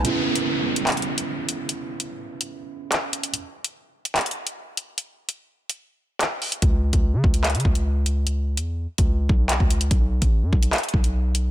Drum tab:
HH |x-----x-------x-xxxx--x-----x---|x-----x-------x---------x---x-x-|x-----x-------x-xxxx--x-----x---|x-----x-------x---------x---o-x-|
CP |----------------x---------------|------------------------x-------|----------------x---------------|------------------------x-------|
BD |--------------------------------|--------------------------------|--------------------------------|--------------------------------|

HH |x-----x-------x-xxxx--x-----x---|x-----x-------x---------x---x-x-|x-----x-------x-xxxx--x-----x---|
CP |----------------x---------------|------------------------x-------|----------------x---------------|
BD |o-----o-----o-------o-----------|--------------o-----o-----o-----|o-----o-----o-------o-----------|